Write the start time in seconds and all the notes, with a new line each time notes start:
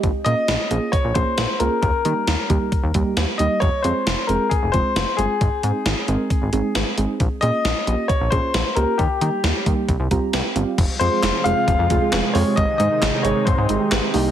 0.03 A#1, kick, closed hi-hat
0.25 A#2 A#3 C#4 F4 G#4 D#5, closed hi-hat
0.48 A#1, snare, closed hi-hat
0.70 A#1 A#3 C#4 F4 G#4, closed hi-hat
0.92 C#5, kick, closed hi-hat
1.04 A#1
1.14 A#1 A#3 C#4 F4 G#4 C5, kick, closed hi-hat
1.38 A#1, snare, closed hi-hat
1.59 C#2 A#3 C#4 F4 G#4 A#4, closed hi-hat
1.82 D#2 A#4, kick, closed hi-hat
2.05 D#3 G3 A#3 D#4 G4, closed hi-hat
2.27 D#2, snare, closed hi-hat
2.50 D#2 G3 A#3 D#4 G4, kick, closed hi-hat
2.72 kick, closed hi-hat
2.84 D#2
2.94 D#2 G3 A#3 D#4 G4, kick, closed hi-hat
3.17 D#2, snare, closed hi-hat
3.38 D#2 G3 A#3 D#4 G4 D#5, closed hi-hat
3.60 F1 C#5, kick, closed hi-hat
3.82 F2 G#3 C4 F4 G#4 C5, closed hi-hat
4.07 F1, snare, closed hi-hat
4.27 F1 G#3 C4 F4 G#4 A#4, closed hi-hat
4.49 G#4, kick, closed hi-hat
4.63 F1
4.72 F1 G#3 C4 F4 G#4 C5, kick, closed hi-hat
4.96 F1, snare, closed hi-hat
5.17 G1 G#3 C4 F4 G#4, closed hi-hat
5.41 G#1, kick, closed hi-hat
5.63 G#2 G#3 C4 D#4 G#4, closed hi-hat
5.86 G#1, snare, closed hi-hat
6.08 G#1 G#3 C4 D#4 A#4, closed hi-hat
6.30 kick, closed hi-hat
6.42 G#1
6.53 G#1 G#3 C4 D#4 G#4, closed hi-hat
6.75 G#1, snare, closed hi-hat
6.98 G#1 G#3 C4 D#4 G#4, closed hi-hat
7.20 A#1, kick, closed hi-hat
7.41 A#2 A#3 C#4 F4 G#4 D#5, closed hi-hat
7.65 A#1, snare, closed hi-hat
7.87 A#1 A#3 C#4 F4 G4, closed hi-hat
8.08 C#5, kick, closed hi-hat
8.21 A#1
8.30 A#1 A#3 C#4 F4 G#4 C5, kick, closed hi-hat
8.54 A#1, snare, closed hi-hat
8.76 C#2 A#3 C#4 F4 G4 A#4, closed hi-hat
8.98 D#2 G4, kick, closed hi-hat
9.21 D#3 G3 A#3 D#4 G4, closed hi-hat
9.44 D#2, snare, closed hi-hat
9.66 D#2 G3 A#3 D#4 G4, kick, closed hi-hat
9.89 C2, kick, closed hi-hat
10.00 C2
10.11 C2 G3 C4 F4 G4 A#5, kick, closed hi-hat
10.33 C2 G5, snare, closed hi-hat
10.56 G1 G3 C4 F4 G4 F5, closed hi-hat
10.78 F1 C3 F3 G#3 F4, kick, closed hi-hat, crash
10.99 F2 G#3 C4 F4 G#4 C5, closed hi-hat
11.12 G#3 C4 F4 G#4
11.23 F1, snare, clap, closed hi-hat
11.44 F1 G#3 C4 F4 G#4 F5, closed hi-hat
11.57 G#3 C4 F4 G#4
11.68 F1, kick, closed hi-hat
11.79 F2
11.90 F1 G#3 C4 F4 G#4, kick, closed hi-hat
12.02 G#3 C4 F4 G#4
12.13 F1, snare, clap, closed hi-hat
12.34 F2 G#3 C4 F4 G#4 C#5, open hi-hat
12.47 G#3 C4 F4 G4
12.56 G#1 D#3 D#4 D#5, kick, closed hi-hat
12.78 G#2 G#3 C4 D#4 G#4 D#5, closed hi-hat
12.91 G#3 C4 D#4 G#4
13.02 G#1, snare, clap, closed hi-hat
13.23 G#1 G#3 C4 D#4 G#4 C#5, closed hi-hat
13.36 G#3 C4 D#4 G#4
13.45 G#1 C5, kick, closed hi-hat
13.58 G#2
13.69 G#1 G#3 C4 D#4 G#4, closed hi-hat
13.80 G#3 C4 D#4 G4
13.92 G#1, snare, clap, closed hi-hat
14.14 C2 G3 A#3 C4 D#4 G4, open hi-hat